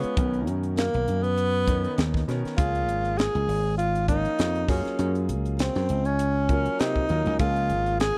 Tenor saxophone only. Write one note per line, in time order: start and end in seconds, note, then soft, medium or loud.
0.00 0.46 B3 medium
0.77 1.24 A#3 medium
1.23 2.14 B3 loud
2.57 3.19 F4 medium
3.18 3.77 G#4 medium
3.78 4.06 F4 medium
4.08 4.71 D#4 medium
4.69 5.29 C#4 medium
5.59 6.07 C4 medium
6.06 6.81 C#4 medium
6.80 7.39 D#4 medium
7.40 7.96 F4 medium
8.00 8.18 G#4 medium